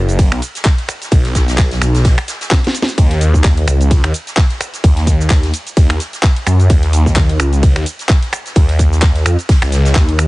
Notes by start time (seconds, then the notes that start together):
Already playing: F#1
0.09 closed hi-hat, cabasa
0.19 kick, closed hi-hat, ride, cabasa
0.32 B1, finger snap, snare, closed hi-hat
0.42 closed hi-hat, open hi-hat, cabasa
0.55 snare, closed hi-hat, cabasa
0.65 kick, snare, clap, closed hi-hat, ride, cabasa
0.78 snare, closed hi-hat
0.89 finger snap, closed hi-hat, open hi-hat, cabasa
1.02 snare, closed hi-hat, cabasa
1.11 B1, kick, closed hi-hat, ride, cabasa
1.25 snare, open hi-hat
1.35 kick, snare, closed hi-hat, open hi-hat, cabasa
1.48 snare, closed hi-hat, cabasa
1.58 B1, kick, snare, clap, closed hi-hat, ride, cabasa
1.71 snare, closed hi-hat
1.81 B1, finger snap, snare, closed hi-hat, open hi-hat, cabasa
1.95 snare, closed hi-hat, cabasa
2.04 kick, snare, closed hi-hat, ride, cabasa
2.18 finger snap, snare, closed hi-hat
2.27 snare, closed hi-hat, open hi-hat, cabasa
2.41 snare, closed hi-hat, cabasa
2.51 kick, snare, clap, closed hi-hat, ride, cabasa
2.64 snare, closed hi-hat
2.75 closed hi-hat, open hi-hat, cabasa
2.82 snare
2.88 closed hi-hat, cabasa
2.98 D#2, kick, closed hi-hat, ride, cabasa
3.11 snare, closed hi-hat
3.21 closed hi-hat, open hi-hat, cabasa
3.34 kick, snare, cabasa
3.44 D#2, kick, snare, clap, closed hi-hat, ride, cabasa
3.57 closed hi-hat
3.68 C#2, finger snap, closed hi-hat, open hi-hat, cabasa
3.81 closed hi-hat, cabasa
3.91 kick, closed hi-hat, ride, cabasa
4.04 D#2, finger snap, snare, closed hi-hat
4.14 closed hi-hat, open hi-hat, cabasa
4.27 snare, closed hi-hat, cabasa
4.37 kick, snare, clap, closed hi-hat, ride, cabasa
4.50 snare, closed hi-hat
4.61 finger snap, closed hi-hat, open hi-hat, cabasa
4.74 snare, closed hi-hat, cabasa
4.84 D#2, kick, closed hi-hat, ride, cabasa
4.97 snare, closed hi-hat
5.07 kick, closed hi-hat, open hi-hat, cabasa
5.20 snare, cabasa
5.30 kick, snare, clap, closed hi-hat, ride, cabasa
5.43 snare, closed hi-hat
5.54 closed hi-hat, open hi-hat, cabasa
5.67 closed hi-hat, cabasa
5.77 D#2, kick, closed hi-hat, ride, cabasa
5.90 finger snap, snare, closed hi-hat
6.00 snare, closed hi-hat, open hi-hat, cabasa
6.13 snare, closed hi-hat, cabasa
6.23 kick, snare, clap, closed hi-hat, ride, cabasa
6.36 closed hi-hat
6.47 F#2, finger snap, closed hi-hat, open hi-hat, cabasa
6.60 closed hi-hat, cabasa
6.69 kick, closed hi-hat, ride, cabasa
6.83 snare, closed hi-hat
6.93 closed hi-hat, open hi-hat, cabasa
7.06 kick, snare, cabasa
7.16 D#2, kick, snare, clap, closed hi-hat, ride, cabasa
7.29 closed hi-hat
7.40 C#2, finger snap, closed hi-hat, open hi-hat, cabasa
7.53 closed hi-hat, cabasa
7.63 kick, closed hi-hat, ride, cabasa
7.76 D#2, finger snap, snare, closed hi-hat
7.86 closed hi-hat, open hi-hat, cabasa
7.99 snare, closed hi-hat, cabasa
8.09 kick, snare, clap, closed hi-hat, ride, cabasa
8.23 snare, closed hi-hat
8.33 finger snap, closed hi-hat, open hi-hat, cabasa
8.46 snare, closed hi-hat, cabasa
8.55 D#2, kick, closed hi-hat, ride, cabasa
8.69 snare, closed hi-hat
8.79 kick, closed hi-hat, open hi-hat, cabasa
8.92 snare, cabasa
9.02 kick, snare, clap, closed hi-hat, ride, cabasa
9.16 snare, closed hi-hat
9.26 F2, finger snap, closed hi-hat, open hi-hat, cabasa
9.39 closed hi-hat, cabasa
9.49 kick, snare, closed hi-hat, ride, cabasa
9.62 C#2, finger snap, snare, closed hi-hat
9.72 snare, closed hi-hat, open hi-hat, cabasa
9.85 snare, closed hi-hat, cabasa
9.95 D#2, kick, snare, clap, closed hi-hat, ride, cabasa
10.09 closed hi-hat
10.19 finger snap, closed hi-hat, open hi-hat, cabasa